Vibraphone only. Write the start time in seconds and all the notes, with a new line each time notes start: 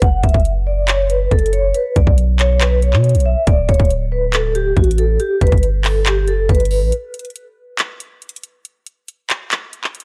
0.02 F#5
0.24 E5
0.67 D5
0.88 C#5
1.10 B4
1.31 A4
1.53 C#5
1.74 B4
1.96 D5
2.39 C#5
2.61 B4
2.82 C#5
3.26 E5
3.47 D5
3.69 C#5
4.12 B4
4.34 A4
4.55 G4
4.77 F#4
4.98 A4
5.20 G4
5.41 B4
5.84 A4
6.06 G4
6.28 A4
6.49 B4